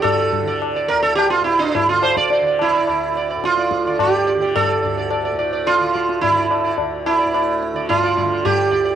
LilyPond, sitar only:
\new Staff \with { instrumentName = "Sitar" } { \time 4/4 \tempo 4 = 107 << { d''16 d''8 d''8 d''8 r2 r16 | d''16 d''8 d''16 d''8 d''16 d''8 d''8 d''8 d''16 d''16 d''16~ | d''16 d''16 d''16 d''16 d''16 d''16 d''16 d''8 d''16 d''8 r16 d''16 d''16 d''16~ | d''16 r8 d''16 d''8 r16 d''8 d''16 d''8 r16 d''16 d''16 d''16 | } \\ { a'4. bes'16 a'16 g'16 f'16 e'16 d'16 e'16 f'16 c''16 d''16 | r8 e'4. f'4 g'4 | a'4. r8 f'4 e'4 | r8 e'4. f'4 g'4 | } >> }